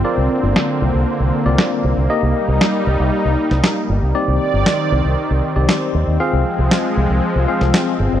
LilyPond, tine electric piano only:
\new Staff \with { instrumentName = "Tine electric piano" } { \time 4/4 \key c \minor \tempo 4 = 117 <c' f' bes' d''>2~ <c' f' bes' d''>8. <c' f' bes' d''>4~ <c' f' bes' d''>16 | <bes ees' g' ees''>2~ <bes ees' g' ees''>8 r4. | <c' ees' g' d''>2~ <c' ees' g' d''>8. <c' ees' g' d''>4~ <c' ees' g' d''>16 | <c' f' aes' f''>2~ <c' f' aes' f''>8 <c' f' aes' f''>4. | }